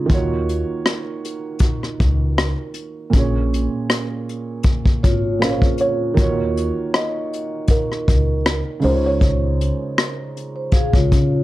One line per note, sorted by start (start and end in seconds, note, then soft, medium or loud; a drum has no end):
0.00 0.12 C#3 medium
0.00 0.12 G#3 soft
0.00 0.10 D#4 medium
0.00 0.10 F4 medium
0.00 0.11 C#5 medium
0.06 0.62 D#2 medium
0.06 3.08 D#3 medium
0.06 3.08 A#3 medium
0.06 3.10 F4 medium
0.06 kick loud
0.06 closed hi-hat medium
0.12 3.11 F#4 medium
0.12 3.12 C#5 medium
0.49 closed hi-hat medium
0.86 cross-stick loud
0.86 closed hi-hat medium
1.25 closed hi-hat medium
1.59 kick medium
1.59 closed hi-hat medium
1.83 cross-stick soft
2.00 2.52 C#2 medium
2.00 kick medium
2.00 closed hi-hat medium
2.38 cross-stick loud
2.38 closed hi-hat medium
2.74 closed hi-hat medium
3.10 3.66 A#1 medium
3.10 5.36 A#2 medium
3.10 5.37 A#3 medium
3.10 5.38 C#4 medium
3.10 kick loud
3.10 closed hi-hat medium
3.16 5.39 G#4 medium
3.16 5.40 C#5 medium
3.54 closed hi-hat medium
3.90 cross-stick loud
3.90 closed hi-hat medium
4.29 closed hi-hat medium
4.63 kick medium
4.63 closed hi-hat medium
4.86 kick medium
5.03 5.56 G#1 medium
5.03 5.40 F4 medium
5.03 5.39 C#5 medium
5.03 kick medium
5.03 closed hi-hat medium
5.39 6.16 A#2 soft
5.39 6.14 A#3 soft
5.39 6.17 C#4 soft
5.39 5.62 G#4 medium
5.39 6.18 G#4 soft
5.39 5.61 F5 medium
5.39 cross-stick loud
5.39 closed hi-hat medium
5.43 5.49 C5 soft
5.50 6.21 C#5 soft
5.62 6.15 F4 medium
5.62 6.14 C#5 medium
5.62 kick medium
5.78 6.97 C#5 medium
5.78 closed hi-hat medium
6.14 6.70 D#2 loud
6.14 8.78 D#3 medium
6.14 8.78 A#3 medium
6.14 kick loud
6.14 closed hi-hat medium
6.18 8.80 F4 medium
6.18 8.81 F#4 medium
6.18 8.82 C#5 medium
6.57 closed hi-hat medium
6.94 7.72 D#5 loud
6.94 cross-stick loud
6.94 closed hi-hat medium
7.33 closed hi-hat medium
7.67 8.87 A#4 medium
7.67 kick medium
7.67 closed hi-hat medium
7.92 cross-stick soft
8.08 8.60 C#2 medium
8.08 kick medium
8.08 closed hi-hat medium
8.46 cross-stick loud
8.46 closed hi-hat medium
8.80 9.69 C#2 medium
8.80 11.43 C#3 medium
8.80 11.44 G#3 medium
8.80 open hi-hat soft
8.84 11.44 D#4 soft
8.84 11.44 F4 medium
8.84 9.05 C5 medium
8.88 8.93 A#4 medium
8.94 11.44 C#5 medium
9.06 9.77 C#5 medium
9.21 kick medium
9.21 closed hi-hat medium
9.61 closed hi-hat medium
9.98 cross-stick loud
9.98 closed hi-hat medium
10.37 closed hi-hat medium
10.56 10.72 C5 medium
10.72 10.93 G#4 medium
10.72 10.93 F5 medium
10.72 kick medium
10.72 closed hi-hat medium
10.93 11.09 C#2 medium
10.93 11.44 F4 medium
10.93 11.44 C#5 medium
10.93 kick medium
11.12 11.44 C#3 medium
11.12 kick medium
11.12 closed hi-hat medium